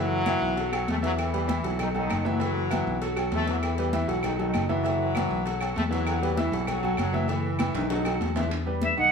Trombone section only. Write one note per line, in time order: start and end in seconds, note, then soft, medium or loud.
0.00 0.84 F#2 medium
0.00 0.85 F#3 loud
0.90 0.96 A2 medium
0.90 0.97 A3 loud
1.05 1.11 F#2 medium
1.05 1.12 F#3 medium
1.22 1.77 E3 medium
1.22 1.77 E4 medium
1.82 1.88 D#3 medium
1.82 1.88 D#4 medium
1.96 2.24 D#3 loud
1.96 2.24 D#4 medium
2.26 2.41 F#2 medium
2.26 2.41 F#3 medium
2.42 3.02 F#2 medium
2.42 3.02 F#3 loud
3.34 3.48 A2 medium
3.34 3.48 A3 loud
3.50 3.57 F#2 medium
3.50 3.56 F#3 medium
3.64 4.21 E3 medium
3.64 4.21 E4 medium
4.24 4.38 D#3 medium
4.24 4.38 D#4 medium
4.39 4.67 D#3 loud
4.39 4.68 D#4 medium
4.69 4.85 F#2 medium
4.69 4.84 F#3 medium
4.86 5.73 F#2 medium
4.86 5.73 F#3 medium
5.76 5.83 A2 medium
5.76 5.83 A3 loud
5.93 6.35 F#2 medium
5.93 6.35 F#3 loud
6.37 6.68 E3 medium
6.37 6.68 E4 medium
6.69 6.98 F#2 medium
6.69 6.97 F#3 medium
6.98 7.28 F#2 medium
6.98 7.27 F#3 loud
7.30 7.75 E3 medium
7.30 7.75 E4 medium
7.75 8.18 D#3 medium
7.75 8.18 D#4 medium